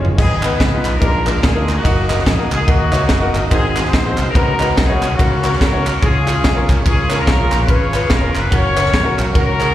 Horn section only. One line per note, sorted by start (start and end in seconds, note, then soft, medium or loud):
0.19 0.98 B3 medium
0.19 0.52 D#4 medium
0.19 0.50 G#4 medium
0.52 0.99 D#4 medium
0.52 0.99 G#4 medium
0.52 0.94 B4 medium
0.94 1.00 A#4 medium
1.01 1.42 D4 medium
1.01 1.42 F4 medium
1.01 1.25 A#4 medium
1.27 1.42 A#4 medium
1.43 1.82 D4 medium
1.43 1.82 F4 medium
1.43 1.77 G#4 medium
1.77 2.56 A#3 medium
1.77 2.56 D#4 medium
1.77 2.16 F#4 medium
2.18 2.26 F#4 medium
2.26 2.52 G#4 medium
2.53 2.68 G#4 medium
2.68 3.48 A#3 medium
2.68 3.48 D#4 medium
2.68 3.35 F#4 medium
3.52 4.32 C4 medium
3.52 4.32 D#4 medium
3.52 3.84 G#4 loud
3.86 4.07 C5 loud
4.09 4.27 C5 medium
4.29 4.36 A#4 medium
4.37 4.77 D#4 medium
4.37 5.11 F#4 medium
4.37 4.76 A#4 loud
4.78 5.17 B3 medium
4.78 5.16 D#4 medium
4.78 5.11 G#4 loud
5.12 5.91 A#3 medium
5.12 5.60 C#4 medium
5.12 5.53 F#4 loud
5.54 5.60 F#4 medium
5.61 6.00 C#4 medium
5.61 6.00 F#4 medium
5.61 6.03 A#4 loud
6.04 6.69 C#4 medium
6.04 6.69 F4 medium
6.04 6.70 G#4 loud
6.86 7.18 C#4 medium
6.86 7.18 F4 medium
6.86 7.17 G#4 loud
7.19 7.98 C#4 medium
7.19 7.68 F4 medium
7.19 7.61 A#4 loud
7.61 7.69 B4 medium
7.70 8.49 F4 medium
7.70 8.49 G#4 medium
7.70 8.11 C#5 loud
8.12 8.37 A#4 loud
8.38 8.54 B4 loud
8.53 9.32 F#4 medium
8.53 9.32 A#4 medium
8.53 9.16 C#5 loud
9.38 9.74 C#4 medium
9.38 9.74 F#4 medium
9.38 9.74 A#4 loud